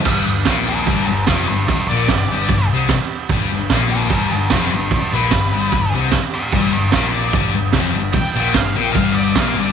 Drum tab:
CC |x-x-x-x-|x-x-x-x-|x-x-x-x-|x-x-x-x-|
SD |--o---o-|--o---o-|--o---o-|--o---o-|
BD |o-o-o-o-|o-o-o-o-|o-o-o-o-|o-o-o-o-|

CC |x-x-x-x-|x-x-x-x-|
SD |--o---o-|--o---o-|
BD |o-o-o-o-|o-o-o-o-|